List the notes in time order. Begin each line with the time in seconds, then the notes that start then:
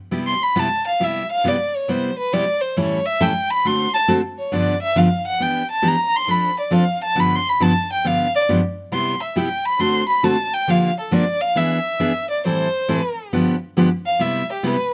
0.11 C3 G3 B3 E4 G4
0.27 C6
0.43 B5
0.56 C3 G3 B3 E4 G4 A5
0.87 F5
1.00 C3 G3 B3 E4 G4 E5
1.31 F5
1.44 C3 G3 B3 E4 G4 D5
1.75 C#5
1.88 C3 G3 B3 E4 G4 C5
2.18 B4
2.33 C3 G3 B3 E4 G4 D5
2.61 C5
2.76 A2 E3 G3 C#4 E4 A4 C#5
3.06 E5
3.20 A2 E3 G3 C#4 E4 A4 G5
3.50 B5
3.65 D3 A3 C4 F#4 A4 C6
3.94 A5
4.08 D3 A3 C4 F#4 A4
4.38 C#5
4.52 G2 D3 F3 B3 D4 G4 D5
4.82 E5
4.96 G2 D3 F3 B3 D4 G4 F5
5.27 F#5
5.40 E3 B3 D4 G4 G5
5.71 A5
5.82 E3 B3 D4 G4
5.87 A#5
6.16 C6
6.28 F3 C4 D4 A4 B5
6.59 D5
6.71 F3 C4 D4 A4 F5
7.03 A5
7.15 G2 D3 F3 B3 D4 G4
7.20 B5
7.35 C6
7.49 B5
7.60 G2 D3 F3 B3 D4 G4 A5
7.92 G5
8.05 G2 D3 F3 B3 D4 G4 F5
8.35 D5
8.49 G2 D3 F3 B3 D4 G4
8.92 C3 G3 B3 E4 G4 C6
9.22 E5
9.36 C3 G3 B3 E4 G4 G5
9.65 B5
9.79 D3 A3 C4 F#4 A4 C6
10.08 B5
10.23 D3 A3 C4 F#4 A4 A5
10.54 G5
10.68 D3 F3 A#3 D4 G4 F5
11.00 A4
11.11 D3 F3 A#3 D4 G4 D5
11.41 F5
11.55 E3 B3 D4 G#4 E5
12.00 E3 B3 D4 G#4
12.30 D5
12.45 A2 E3 G3 C4 E4 A4 C5
12.88 A2 E3 G3 C4 E4 A4
13.33 G2 D3 F3 B3 D4 G4
13.77 G2 D3 F3 B3 D4 G4
14.06 F5
14.19 C3 G3 B3 E4 G4 E5
14.52 G4
14.63 C3 G3 B3 E4 G4 B4